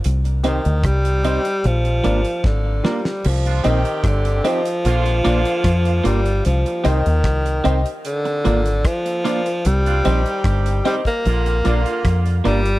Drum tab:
CC |----------------|x---------------|----------------|----------------|
HH |xxxxxxxxxxxx----|-xxxxxxxxxxxxxxx|xxxxxxxxxxxxxxxx|xxxxxxxxxxxxxxxx|
SD |----r-------o-oo|----r-------r---|----r-------r---|----r-------r---|
BD |----o-------o---|----o-------o---|----o-------o---|----o--o----o---|